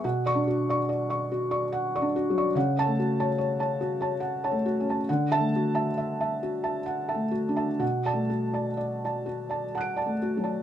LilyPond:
<<
  \new Staff \with { instrumentName = "Felt piano" } { \time 3/4 \key b \minor \tempo 4 = 69 << { r16 cis'''16 r2 r8 | r16 a''16 r2 r8 | r16 a''16 r2 r8 | r16 a''16 r4. <a'' fis''' d''''>4 | } \\ { fis''16 d''16 fis'16 <d'' cis'''>16 d''16 <d'' cis'''>16 fis'16 <d'' cis'''>16 fis''16 <d'' cis'''>16 fis'16 <d'' cis'''>16 | fis''16 cis''16 fis'16 <cis'' a''>16 cis''16 <cis'' a''>16 fis'16 <cis'' a''>16 fis''16 <cis'' a''>16 fis'16 <cis'' a''>16 | fis''16 e''16 fis'16 <e'' a''>16 e''16 <e'' a''>16 fis'16 <e'' a''>16 fis''16 <e'' a''>16 fis'16 <e'' a''>16 | fis''16 d''16 fis'16 <d'' a''>16 d''16 <d'' a''>16 fis'16 <d'' a''>16 fis''16 <d'' a''>16 fis'16 <d'' a''>16 | } >> }
  \new Staff \with { instrumentName = "Felt piano" } { \time 3/4 \key b \minor \tuplet 3/2 { b,8 d'4 } r4 \tuplet 3/2 { r8 d'8 fis8 } | \tuplet 3/2 { cis8 a4 } r4 \tuplet 3/2 { r8 a8 cis'8 } | \tuplet 3/2 { d8 a4 } r4 \tuplet 3/2 { r8 a8 d'8 } | \tuplet 3/2 { b,8 a4 } r4 \tuplet 3/2 { r8 a8 fis8 } | }
>>